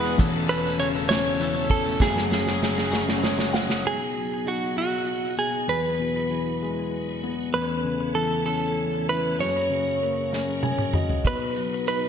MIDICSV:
0, 0, Header, 1, 6, 480
1, 0, Start_track
1, 0, Key_signature, 5, "major"
1, 0, Tempo, 606061
1, 146, Time_signature, 6, 3, 24, 8
1, 2546, Tempo, 617920
1, 9438, End_track
2, 0, Start_track
2, 0, Title_t, "Clean electric guitar"
2, 0, Program_c, 0, 27
2, 0, Note_on_c, 0, 71, 67
2, 127, Note_off_c, 0, 71, 0
2, 391, Note_on_c, 0, 71, 93
2, 628, Note_off_c, 0, 71, 0
2, 631, Note_on_c, 0, 73, 107
2, 695, Note_off_c, 0, 73, 0
2, 863, Note_on_c, 0, 73, 84
2, 1349, Note_off_c, 0, 73, 0
2, 1352, Note_on_c, 0, 69, 83
2, 1594, Note_off_c, 0, 69, 0
2, 1598, Note_on_c, 0, 68, 86
2, 2763, Note_off_c, 0, 68, 0
2, 3054, Note_on_c, 0, 68, 68
2, 3530, Note_on_c, 0, 66, 58
2, 3536, Note_off_c, 0, 68, 0
2, 3753, Note_off_c, 0, 66, 0
2, 3762, Note_on_c, 0, 66, 64
2, 4204, Note_off_c, 0, 66, 0
2, 4233, Note_on_c, 0, 68, 68
2, 4468, Note_off_c, 0, 68, 0
2, 4471, Note_on_c, 0, 71, 76
2, 5635, Note_off_c, 0, 71, 0
2, 5905, Note_on_c, 0, 71, 70
2, 6376, Note_off_c, 0, 71, 0
2, 6379, Note_on_c, 0, 69, 69
2, 6611, Note_off_c, 0, 69, 0
2, 6621, Note_on_c, 0, 69, 63
2, 7109, Note_off_c, 0, 69, 0
2, 7113, Note_on_c, 0, 71, 75
2, 7329, Note_off_c, 0, 71, 0
2, 7355, Note_on_c, 0, 73, 79
2, 8519, Note_off_c, 0, 73, 0
2, 8805, Note_on_c, 0, 71, 79
2, 9268, Note_off_c, 0, 71, 0
2, 9278, Note_on_c, 0, 71, 86
2, 9438, Note_off_c, 0, 71, 0
2, 9438, End_track
3, 0, Start_track
3, 0, Title_t, "Clean electric guitar"
3, 0, Program_c, 1, 27
3, 26, Note_on_c, 1, 68, 55
3, 34, Note_on_c, 1, 66, 48
3, 45, Note_on_c, 1, 59, 50
3, 145, Note_off_c, 1, 68, 0
3, 150, Note_off_c, 1, 66, 0
3, 151, Note_off_c, 1, 59, 0
3, 151, Note_on_c, 1, 52, 83
3, 154, Note_on_c, 1, 57, 85
3, 160, Note_on_c, 1, 61, 74
3, 161, Note_on_c, 1, 69, 89
3, 380, Note_off_c, 1, 52, 0
3, 387, Note_off_c, 1, 57, 0
3, 390, Note_on_c, 1, 52, 68
3, 392, Note_off_c, 1, 61, 0
3, 392, Note_off_c, 1, 69, 0
3, 397, Note_on_c, 1, 57, 67
3, 401, Note_on_c, 1, 61, 66
3, 406, Note_on_c, 1, 69, 69
3, 502, Note_off_c, 1, 69, 0
3, 507, Note_off_c, 1, 52, 0
3, 510, Note_off_c, 1, 57, 0
3, 512, Note_off_c, 1, 61, 0
3, 512, Note_on_c, 1, 69, 53
3, 522, Note_on_c, 1, 61, 57
3, 530, Note_on_c, 1, 57, 50
3, 748, Note_off_c, 1, 69, 0
3, 753, Note_off_c, 1, 61, 0
3, 757, Note_off_c, 1, 57, 0
3, 760, Note_on_c, 1, 69, 53
3, 767, Note_on_c, 1, 61, 49
3, 776, Note_on_c, 1, 57, 47
3, 872, Note_off_c, 1, 69, 0
3, 875, Note_off_c, 1, 61, 0
3, 877, Note_off_c, 1, 57, 0
3, 882, Note_on_c, 1, 52, 90
3, 886, Note_on_c, 1, 57, 85
3, 889, Note_on_c, 1, 61, 93
3, 896, Note_on_c, 1, 69, 88
3, 1107, Note_off_c, 1, 52, 0
3, 1115, Note_off_c, 1, 57, 0
3, 1116, Note_off_c, 1, 61, 0
3, 1117, Note_on_c, 1, 52, 60
3, 1119, Note_off_c, 1, 69, 0
3, 1124, Note_on_c, 1, 57, 72
3, 1132, Note_on_c, 1, 61, 67
3, 1134, Note_on_c, 1, 69, 69
3, 1227, Note_off_c, 1, 69, 0
3, 1230, Note_off_c, 1, 52, 0
3, 1232, Note_off_c, 1, 61, 0
3, 1234, Note_off_c, 1, 57, 0
3, 1236, Note_on_c, 1, 69, 56
3, 1242, Note_on_c, 1, 61, 45
3, 1250, Note_on_c, 1, 57, 44
3, 1458, Note_off_c, 1, 69, 0
3, 1468, Note_on_c, 1, 69, 53
3, 1472, Note_off_c, 1, 61, 0
3, 1473, Note_off_c, 1, 57, 0
3, 1480, Note_on_c, 1, 61, 45
3, 1483, Note_on_c, 1, 57, 42
3, 1584, Note_off_c, 1, 61, 0
3, 1585, Note_off_c, 1, 69, 0
3, 1588, Note_on_c, 1, 49, 82
3, 1589, Note_on_c, 1, 42, 86
3, 1590, Note_off_c, 1, 57, 0
3, 1594, Note_on_c, 1, 54, 85
3, 1594, Note_on_c, 1, 61, 84
3, 1594, Note_on_c, 1, 66, 89
3, 1598, Note_on_c, 1, 68, 81
3, 1806, Note_off_c, 1, 54, 0
3, 1811, Note_off_c, 1, 61, 0
3, 1815, Note_on_c, 1, 54, 60
3, 1819, Note_off_c, 1, 66, 0
3, 1821, Note_on_c, 1, 61, 68
3, 1822, Note_off_c, 1, 68, 0
3, 1825, Note_off_c, 1, 42, 0
3, 1825, Note_off_c, 1, 49, 0
3, 1828, Note_on_c, 1, 66, 71
3, 1832, Note_on_c, 1, 68, 61
3, 1934, Note_off_c, 1, 68, 0
3, 1939, Note_off_c, 1, 54, 0
3, 1939, Note_off_c, 1, 66, 0
3, 1942, Note_off_c, 1, 61, 0
3, 1944, Note_on_c, 1, 68, 49
3, 1948, Note_on_c, 1, 66, 52
3, 1954, Note_on_c, 1, 61, 46
3, 1955, Note_on_c, 1, 54, 48
3, 2167, Note_off_c, 1, 68, 0
3, 2175, Note_off_c, 1, 66, 0
3, 2176, Note_on_c, 1, 68, 54
3, 2181, Note_off_c, 1, 61, 0
3, 2182, Note_off_c, 1, 54, 0
3, 2185, Note_on_c, 1, 66, 54
3, 2191, Note_on_c, 1, 54, 47
3, 2191, Note_on_c, 1, 61, 60
3, 2297, Note_off_c, 1, 61, 0
3, 2299, Note_off_c, 1, 54, 0
3, 2299, Note_on_c, 1, 42, 85
3, 2301, Note_off_c, 1, 68, 0
3, 2302, Note_on_c, 1, 49, 92
3, 2303, Note_off_c, 1, 66, 0
3, 2307, Note_on_c, 1, 61, 102
3, 2309, Note_on_c, 1, 54, 88
3, 2310, Note_on_c, 1, 68, 98
3, 2312, Note_on_c, 1, 66, 110
3, 2541, Note_off_c, 1, 54, 0
3, 2544, Note_off_c, 1, 42, 0
3, 2544, Note_off_c, 1, 61, 0
3, 2546, Note_off_c, 1, 49, 0
3, 2549, Note_off_c, 1, 66, 0
3, 2550, Note_off_c, 1, 68, 0
3, 2551, Note_on_c, 1, 54, 68
3, 2554, Note_on_c, 1, 61, 74
3, 2558, Note_on_c, 1, 66, 75
3, 2566, Note_on_c, 1, 68, 75
3, 2662, Note_off_c, 1, 68, 0
3, 2668, Note_off_c, 1, 54, 0
3, 2668, Note_off_c, 1, 66, 0
3, 2670, Note_off_c, 1, 61, 0
3, 2671, Note_on_c, 1, 68, 63
3, 2678, Note_on_c, 1, 66, 54
3, 2680, Note_on_c, 1, 61, 47
3, 2684, Note_on_c, 1, 54, 43
3, 2896, Note_off_c, 1, 68, 0
3, 2903, Note_off_c, 1, 66, 0
3, 2904, Note_off_c, 1, 61, 0
3, 2905, Note_on_c, 1, 68, 52
3, 2910, Note_off_c, 1, 54, 0
3, 2912, Note_on_c, 1, 66, 56
3, 2913, Note_on_c, 1, 61, 52
3, 2919, Note_on_c, 1, 54, 51
3, 3026, Note_off_c, 1, 68, 0
3, 3029, Note_off_c, 1, 66, 0
3, 3030, Note_off_c, 1, 61, 0
3, 3033, Note_off_c, 1, 54, 0
3, 9438, End_track
4, 0, Start_track
4, 0, Title_t, "Tonewheel organ"
4, 0, Program_c, 2, 16
4, 0, Note_on_c, 2, 54, 66
4, 0, Note_on_c, 2, 59, 55
4, 0, Note_on_c, 2, 64, 62
4, 0, Note_on_c, 2, 68, 63
4, 111, Note_off_c, 2, 68, 0
4, 116, Note_off_c, 2, 59, 0
4, 135, Note_off_c, 2, 64, 0
4, 136, Note_off_c, 2, 54, 0
4, 153, Note_on_c, 2, 52, 68
4, 153, Note_on_c, 2, 61, 61
4, 154, Note_on_c, 2, 69, 73
4, 160, Note_on_c, 2, 57, 60
4, 1572, Note_off_c, 2, 52, 0
4, 1572, Note_off_c, 2, 61, 0
4, 1573, Note_off_c, 2, 69, 0
4, 1576, Note_off_c, 2, 57, 0
4, 1589, Note_on_c, 2, 68, 77
4, 1594, Note_on_c, 2, 54, 72
4, 1594, Note_on_c, 2, 61, 59
4, 1595, Note_on_c, 2, 56, 61
4, 3013, Note_off_c, 2, 68, 0
4, 3018, Note_off_c, 2, 54, 0
4, 3018, Note_off_c, 2, 61, 0
4, 3019, Note_off_c, 2, 56, 0
4, 3022, Note_on_c, 2, 68, 54
4, 3029, Note_on_c, 2, 54, 45
4, 3029, Note_on_c, 2, 63, 49
4, 3031, Note_on_c, 2, 59, 43
4, 4454, Note_off_c, 2, 63, 0
4, 4478, Note_on_c, 2, 64, 50
4, 5872, Note_off_c, 2, 68, 0
4, 5875, Note_off_c, 2, 54, 0
4, 5876, Note_off_c, 2, 59, 0
4, 5894, Note_off_c, 2, 64, 0
4, 5910, Note_on_c, 2, 69, 58
4, 5913, Note_on_c, 2, 52, 55
4, 5915, Note_on_c, 2, 57, 46
4, 5915, Note_on_c, 2, 61, 47
4, 7328, Note_off_c, 2, 69, 0
4, 7330, Note_off_c, 2, 52, 0
4, 7330, Note_off_c, 2, 57, 0
4, 7339, Note_on_c, 2, 68, 57
4, 7345, Note_on_c, 2, 54, 55
4, 7347, Note_on_c, 2, 58, 50
4, 8760, Note_off_c, 2, 61, 0
4, 8772, Note_off_c, 2, 54, 0
4, 8773, Note_off_c, 2, 58, 0
4, 8781, Note_on_c, 2, 63, 47
4, 8782, Note_on_c, 2, 59, 46
4, 8785, Note_on_c, 2, 54, 48
4, 9438, Note_off_c, 2, 54, 0
4, 9438, Note_off_c, 2, 59, 0
4, 9438, Note_off_c, 2, 63, 0
4, 9438, Note_off_c, 2, 68, 0
4, 9438, End_track
5, 0, Start_track
5, 0, Title_t, "Grand piano"
5, 0, Program_c, 3, 0
5, 0, Control_c, 3, 64, 127
5, 0, Note_on_c, 3, 28, 64
5, 0, Note_on_c, 3, 40, 73
5, 0, Note_on_c, 3, 47, 59
5, 0, Note_on_c, 3, 52, 53
5, 0, Note_on_c, 3, 56, 54
5, 111, Note_off_c, 3, 28, 0
5, 111, Note_off_c, 3, 40, 0
5, 113, Note_off_c, 3, 47, 0
5, 131, Note_off_c, 3, 52, 0
5, 133, Note_off_c, 3, 56, 0
5, 141, Note_on_c, 3, 28, 72
5, 141, Note_on_c, 3, 40, 72
5, 157, Control_c, 3, 64, 0
5, 279, Control_c, 3, 64, 127
5, 370, Note_on_c, 3, 61, 61
5, 619, Note_on_c, 3, 49, 57
5, 853, Note_off_c, 3, 61, 0
5, 865, Note_on_c, 3, 61, 60
5, 1102, Note_on_c, 3, 52, 57
5, 1336, Note_off_c, 3, 61, 0
5, 1348, Note_on_c, 3, 61, 61
5, 1549, Note_off_c, 3, 28, 0
5, 1549, Note_off_c, 3, 40, 0
5, 1551, Note_off_c, 3, 49, 0
5, 1567, Note_off_c, 3, 52, 0
5, 1578, Note_off_c, 3, 61, 0
5, 1590, Note_on_c, 3, 42, 73
5, 1592, Control_c, 3, 64, 0
5, 1593, Note_on_c, 3, 30, 67
5, 1727, Control_c, 3, 64, 127
5, 1830, Note_on_c, 3, 61, 54
5, 2068, Note_on_c, 3, 49, 50
5, 2299, Note_off_c, 3, 61, 0
5, 2311, Note_on_c, 3, 61, 59
5, 2560, Note_on_c, 3, 73, 67
5, 2562, Note_on_c, 3, 56, 53
5, 2777, Note_off_c, 3, 73, 0
5, 2780, Note_off_c, 3, 61, 0
5, 2792, Note_on_c, 3, 61, 48
5, 2793, Note_on_c, 3, 78, 69
5, 2999, Note_off_c, 3, 42, 0
5, 3000, Note_off_c, 3, 49, 0
5, 3001, Note_off_c, 3, 30, 0
5, 3014, Note_off_c, 3, 78, 0
5, 3020, Note_off_c, 3, 56, 0
5, 3022, Note_off_c, 3, 61, 0
5, 3031, Note_on_c, 3, 47, 50
5, 3036, Control_c, 3, 64, 0
5, 3176, Control_c, 3, 64, 127
5, 3263, Note_on_c, 3, 54, 41
5, 3508, Note_on_c, 3, 63, 41
5, 3728, Note_off_c, 3, 54, 0
5, 3740, Note_on_c, 3, 54, 43
5, 4209, Note_off_c, 3, 47, 0
5, 4221, Note_on_c, 3, 47, 42
5, 4438, Note_off_c, 3, 63, 0
5, 4442, Note_off_c, 3, 54, 0
5, 4457, Note_off_c, 3, 47, 0
5, 4458, Note_on_c, 3, 40, 56
5, 4476, Control_c, 3, 64, 0
5, 4596, Control_c, 3, 64, 127
5, 4705, Note_on_c, 3, 47, 42
5, 4944, Note_on_c, 3, 52, 44
5, 5194, Note_on_c, 3, 56, 45
5, 5635, Note_off_c, 3, 47, 0
5, 5668, Note_on_c, 3, 59, 47
5, 5867, Note_off_c, 3, 40, 0
5, 5873, Note_off_c, 3, 52, 0
5, 5885, Note_off_c, 3, 56, 0
5, 5897, Note_off_c, 3, 59, 0
5, 5904, Note_on_c, 3, 40, 60
5, 5913, Control_c, 3, 64, 0
5, 6038, Control_c, 3, 64, 127
5, 6142, Note_on_c, 3, 49, 44
5, 6379, Note_on_c, 3, 52, 41
5, 6622, Note_on_c, 3, 61, 46
5, 7070, Note_off_c, 3, 49, 0
5, 7107, Note_on_c, 3, 64, 45
5, 7308, Note_off_c, 3, 40, 0
5, 7310, Note_off_c, 3, 52, 0
5, 7318, Note_off_c, 3, 61, 0
5, 7336, Note_off_c, 3, 64, 0
5, 7342, Note_on_c, 3, 42, 58
5, 7348, Control_c, 3, 64, 0
5, 7469, Control_c, 3, 64, 127
5, 7585, Note_on_c, 3, 49, 45
5, 7830, Note_on_c, 3, 58, 41
5, 8067, Note_on_c, 3, 61, 50
5, 8302, Note_on_c, 3, 80, 53
5, 8516, Note_off_c, 3, 49, 0
5, 8526, Note_off_c, 3, 80, 0
5, 8550, Note_on_c, 3, 66, 43
5, 8553, Note_on_c, 3, 75, 56
5, 8754, Note_off_c, 3, 42, 0
5, 8759, Note_off_c, 3, 58, 0
5, 8765, Note_off_c, 3, 61, 0
5, 8772, Note_off_c, 3, 75, 0
5, 8780, Note_off_c, 3, 66, 0
5, 8787, Note_on_c, 3, 47, 54
5, 8791, Control_c, 3, 64, 0
5, 8922, Control_c, 3, 64, 127
5, 9025, Note_on_c, 3, 54, 48
5, 9272, Note_on_c, 3, 63, 45
5, 9438, Note_off_c, 3, 47, 0
5, 9438, Note_off_c, 3, 54, 0
5, 9438, Note_off_c, 3, 63, 0
5, 9438, End_track
6, 0, Start_track
6, 0, Title_t, "Drums"
6, 151, Note_on_c, 9, 36, 111
6, 154, Note_on_c, 9, 51, 65
6, 230, Note_off_c, 9, 36, 0
6, 233, Note_off_c, 9, 51, 0
6, 394, Note_on_c, 9, 51, 34
6, 474, Note_off_c, 9, 51, 0
6, 628, Note_on_c, 9, 51, 54
6, 707, Note_off_c, 9, 51, 0
6, 862, Note_on_c, 9, 51, 70
6, 876, Note_on_c, 9, 38, 114
6, 942, Note_off_c, 9, 51, 0
6, 955, Note_off_c, 9, 38, 0
6, 1113, Note_on_c, 9, 51, 38
6, 1192, Note_off_c, 9, 51, 0
6, 1343, Note_on_c, 9, 51, 62
6, 1347, Note_on_c, 9, 36, 97
6, 1422, Note_off_c, 9, 51, 0
6, 1426, Note_off_c, 9, 36, 0
6, 1585, Note_on_c, 9, 36, 107
6, 1598, Note_on_c, 9, 38, 59
6, 1664, Note_off_c, 9, 36, 0
6, 1677, Note_off_c, 9, 38, 0
6, 1719, Note_on_c, 9, 38, 60
6, 1798, Note_off_c, 9, 38, 0
6, 1839, Note_on_c, 9, 38, 62
6, 1918, Note_off_c, 9, 38, 0
6, 1956, Note_on_c, 9, 38, 66
6, 2036, Note_off_c, 9, 38, 0
6, 2080, Note_on_c, 9, 38, 69
6, 2160, Note_off_c, 9, 38, 0
6, 2202, Note_on_c, 9, 38, 72
6, 2282, Note_off_c, 9, 38, 0
6, 2322, Note_on_c, 9, 38, 77
6, 2401, Note_off_c, 9, 38, 0
6, 2444, Note_on_c, 9, 38, 81
6, 2523, Note_off_c, 9, 38, 0
6, 2562, Note_on_c, 9, 38, 85
6, 2640, Note_off_c, 9, 38, 0
6, 2680, Note_on_c, 9, 38, 86
6, 2757, Note_off_c, 9, 38, 0
6, 2799, Note_on_c, 9, 38, 121
6, 2877, Note_off_c, 9, 38, 0
6, 2921, Note_on_c, 9, 38, 83
6, 2998, Note_off_c, 9, 38, 0
6, 8074, Note_on_c, 9, 38, 46
6, 8152, Note_off_c, 9, 38, 0
6, 8305, Note_on_c, 9, 48, 61
6, 8383, Note_off_c, 9, 48, 0
6, 8425, Note_on_c, 9, 47, 55
6, 8502, Note_off_c, 9, 47, 0
6, 8543, Note_on_c, 9, 45, 86
6, 8621, Note_off_c, 9, 45, 0
6, 8667, Note_on_c, 9, 43, 73
6, 8744, Note_off_c, 9, 43, 0
6, 8786, Note_on_c, 9, 36, 80
6, 8786, Note_on_c, 9, 42, 64
6, 8863, Note_off_c, 9, 36, 0
6, 8864, Note_off_c, 9, 42, 0
6, 9028, Note_on_c, 9, 42, 37
6, 9106, Note_off_c, 9, 42, 0
6, 9271, Note_on_c, 9, 42, 52
6, 9349, Note_off_c, 9, 42, 0
6, 9438, End_track
0, 0, End_of_file